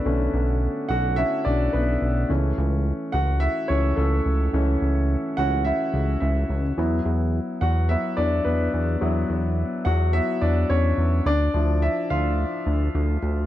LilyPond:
<<
  \new Staff \with { instrumentName = "Grand piano" } { \time 4/4 \key a \major \tempo 4 = 107 r4. <fis' fis''>8 <e' e''>8 <d' d''>8 <b b'>8. r16 | r4. <fis' fis''>8 <e' e''>8 cis''8 <a a'>8. r16 | r4. <fis' fis''>8 <e' e''>4 <e' e''>8. r16 | r4. <fis' fis''>8 e''8 <d' d''>8 <b b'>8. r16 |
r4. <fis' fis''>8 e''8 <d' d''>8 <cis' cis''>4 | <d' d''>4 <e' e''>8 <f' f''>2 r8 | }
  \new Staff \with { instrumentName = "Grand piano" } { \time 4/4 \key a \major <d a cis'>8 r4. <d a cis'>8 r4. | <e a cis'>2~ <e a cis'>8 <e a cis'>8 r4 | <e a cis'>4. <e a cis'>8 r2 | <fis b e'>4. r8 <fis b e'>8 r4. |
<fis b e'>2 <fis b e'>8 r4. | r8 <f d' e'>8 r2. | }
  \new Staff \with { instrumentName = "Analog synth bass" } { \clef bass \time 4/4 \key a \major b,,8 b,,8. r16 b,,8. r16 b,,8 b,,8 b,,8 | cis,8 cis,8. r16 cis,8. r16 cis,8 cis,8 cis,8 | cis,8 cis,8. r16 cis,8. r16 cis,8 cis,8 cis,8 | e,8 e,8. r16 e,8. r16 e,8 e,8 e,8 |
e,8 e,8. r16 e,8. r16 e,8 e,8 e,8 | d,8 d,8. r16 d,8. r16 d,8 d,8 d,8 | }
>>